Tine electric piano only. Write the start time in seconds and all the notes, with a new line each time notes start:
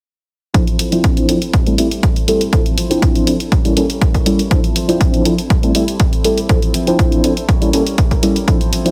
0.54 F3 C4 D4 E4 A4
0.92 F3 C4 D4 E4 C5
1.28 F3 C4 D4 E4 A4
1.66 G3 A3 C4 E4 A4
1.78 G3 A3 C4 E4 A4
2.28 G3 A3 C4 E4 A4
2.52 F3 C4 D4 E4 A4
2.90 F3 C4 D4 E4 C5
3.27 F3 C4 D4 E4 A4
3.65 G3 A#3 C#4 E4 A4
3.76 G3 A#3 C#4 E4 A4
4.26 G3 A#3 C#4 E4 A4
4.51 F3 C4 D4 E4 A4
4.88 F3 C4 D4 E4 C5
5.25 F3 C4 D4 E4 A4
5.63 G3 A3 C4 E4 A4
5.75 G3 A3 C4 E4 A4
6.24 G3 A3 C4 E4 A4
6.49 F3 C4 D4 E4 A4
6.87 F3 C4 D4 E4 C5
7.24 F3 C4 D4 E4 A4
7.61 G3 A#3 C#4 E4 A4
7.73 G3 A#3 C#4 E4 A4
8.23 G3 A#3 C#4 E4 A4
8.47 F3 C4 D4 E4 A4
8.85 F3 C4 D4 E4 C5